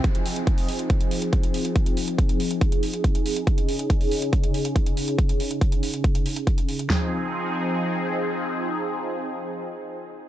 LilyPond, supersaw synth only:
\new Staff \with { instrumentName = "Supersaw synth" } { \time 4/4 \key f \minor \tempo 4 = 140 << { <ees' aes'>1~ | <ees' aes'>1~ | <ees' aes'>1~ | <ees' aes'>1 |
<f c' ees' aes'>1~ | <f c' ees' aes'>1 | } \\ { <f c'>1~ | <f c'>1 | <des des'>1~ | <des des'>1 |
r1 | r1 | } >> }